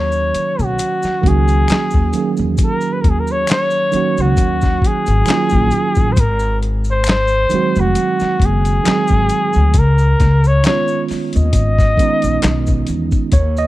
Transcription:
Already playing: upright bass D#2, tine electric piano D#3 F#3 A#3 C#4 F#4, flugelhorn C#5
0.12 maracas
0.34 muted upright bass stroke, closed hi-hat, maracas
0.59 upright bass B1, maracas
0.63 flugelhorn F#4
0.79 closed hi-hat, maracas
1.03 muted upright bass stroke, snare, maracas
1.21 upright bass C#2, tine electric piano D#3 F#3 A#3 C#4, kick
1.26 tine electric piano F#4, flugelhorn G#4, closed hi-hat
1.48 closed hi-hat, maracas
1.68 finger snap, muted upright bass stroke, snare, clap, closed hi-hat, maracas
1.91 upright bass D#2, kick, maracas
2.13 tine electric piano D#3 F#3 A#3 C#4, closed hi-hat, maracas
2.18 tine electric piano G#4
2.37 upright bass E2, maracas
2.58 kick, closed hi-hat, maracas
2.63 flugelhorn A#4
2.81 maracas
2.93 flugelhorn B4
3.01 upright bass D#2, flugelhorn A#4, kick, closed hi-hat
3.09 flugelhorn G#4
3.20 flugelhorn A#4
3.27 maracas
3.32 flugelhorn C#5
3.47 finger snap, clap, closed hi-hat, maracas
3.52 flugelhorn C#5, snare
3.71 maracas
3.91 tine electric piano D#3 F#3 A#3 C#4, muted upright bass stroke, closed hi-hat, maracas
3.96 tine electric piano F#4
4.17 upright bass C#2, flugelhorn F#4, maracas
4.37 upright bass D#2, kick, closed hi-hat, maracas
4.61 kick, snare, maracas
4.82 kick, closed hi-hat
4.87 flugelhorn G#4
5.06 upright bass G#1, closed hi-hat, maracas
5.25 tine electric piano D#3 F#3 A#3, finger snap, muted upright bass stroke, closed hi-hat, maracas
5.30 tine electric piano C#4 F4, snare, clap
5.49 upright bass A#1, kick, maracas
5.71 closed hi-hat, maracas
5.95 upright bass A1, kick, maracas
6.12 flugelhorn C5
6.16 upright bass G#1, flugelhorn A#4, kick, closed hi-hat, maracas
6.39 maracas
6.63 closed hi-hat
6.84 maracas
6.91 flugelhorn C5
7.04 finger snap, closed hi-hat, maracas
7.09 flugelhorn C5, snare, clap
7.28 maracas
7.50 tine electric piano D#3 F#3 G#3 C4, muted upright bass stroke, closed hi-hat, maracas
7.55 tine electric piano F#4
7.76 upright bass F1, maracas
7.80 flugelhorn F#4
7.95 closed hi-hat, maracas
8.20 muted upright bass stroke, snare, maracas
8.40 upright bass F#1, kick, closed hi-hat
8.45 flugelhorn G#4
8.65 closed hi-hat, maracas
8.83 tine electric piano D#3 F#3 G#3 C4, finger snap, muted upright bass stroke, closed hi-hat, maracas
8.87 tine electric piano G#4, snare, clap
9.08 upright bass G#1, kick, maracas
9.29 closed hi-hat, maracas
9.53 upright bass D2, maracas
9.74 upright bass C#2, kick, closed hi-hat, maracas
9.78 flugelhorn A#4
9.98 maracas
10.20 upright bass C#2, kick, snare, closed hi-hat, maracas
10.44 flugelhorn C#5, maracas
10.63 tine electric piano D#3 G#3 B3 C#4, flugelhorn C#5, finger snap, snare, clap, closed hi-hat, maracas
10.69 tine electric piano F4
10.88 maracas
11.08 muted upright bass stroke, snare, open hi-hat, maracas
11.33 upright bass D#2, closed hi-hat, maracas
11.37 flugelhorn D#5
11.53 upright bass G#1, kick, closed hi-hat, maracas
11.78 kick, snare, maracas
11.97 tine electric piano D#3 G#3 B3 C#4, muted upright bass stroke, kick, closed hi-hat, maracas
12.02 tine electric piano D#4
12.22 upright bass A#1, closed hi-hat, maracas
12.42 upright bass B1, finger snap, snare, clap, closed hi-hat, maracas
12.67 kick, maracas
12.87 upright bass E2, closed hi-hat, maracas
13.12 kick, maracas
13.32 upright bass D#2, tine electric piano C#5, kick, closed hi-hat, maracas
13.57 tine electric piano D#5, maracas

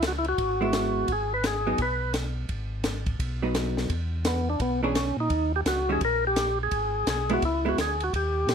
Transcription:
Already playing: tonewheel organ C#2
0.02 snare, hi-hat pedal, ride
0.08 tonewheel organ F#4
0.18 tonewheel organ E4
0.25 ride
0.29 tonewheel organ F#4
0.38 tonewheel organ G#1, kick, ride
0.61 hollow-body jazz guitar G#3 B3 E4
0.73 snare, hi-hat pedal, ride
1.08 tonewheel organ G#1, kick, ride
1.12 tonewheel organ G#4
1.34 tonewheel organ B4
1.44 tonewheel organ G#4, snare, hi-hat pedal, ride
1.67 hollow-body jazz guitar F#3 B3 D#4
1.78 tonewheel organ B1, kick, ride
1.82 tonewheel organ B4
2.14 snare, hi-hat pedal, ride
2.49 tonewheel organ G#1, kick, ride
2.84 snare, hi-hat pedal, ride
3.06 kick, ride
3.19 tonewheel organ B1, kick, ride
3.42 hollow-body jazz guitar F#3 B3 D#4
3.55 snare, hi-hat pedal, ride
3.77 snare
3.90 tonewheel organ E2, kick, ride
4.25 tonewheel organ B3, snare, hi-hat pedal, ride
4.50 tonewheel organ D4
4.59 tonewheel organ B1 B3, kick, ride
4.83 hollow-body jazz guitar E3 B3 D4 G#4, tonewheel organ C#4
4.95 tonewheel organ C#4, snare, hi-hat pedal, ride
5.17 tonewheel organ A#2 D#4
5.30 tonewheel organ D#2, kick, ride
5.56 tonewheel organ G4
5.65 tonewheel organ C#2 F#4, snare, hi-hat pedal, ride
5.89 hollow-body jazz guitar D#3 G3 C#4 F#4, tonewheel organ G#4
6.01 tonewheel organ A#1 A#4, kick, ride
6.27 tonewheel organ G4
6.36 snare, hi-hat pedal, ride
6.63 tonewheel organ G#4
6.71 tonewheel organ G#1, kick, ride
7.07 tonewheel organ B1 G#4, snare, hi-hat pedal, ride
7.29 hollow-body jazz guitar G#3 B3 E4, ride
7.34 tonewheel organ F#4
7.42 tonewheel organ C#2 E4, kick, ride
7.65 hollow-body jazz guitar G#3 B3 E4, tonewheel organ F#4
7.77 tonewheel organ D2 G#4, snare, hi-hat pedal, ride
8.00 tonewheel organ F#4, ride
8.13 tonewheel organ D#2 G4, kick, ride
8.47 tonewheel organ A#2, snare, hi-hat pedal, ride

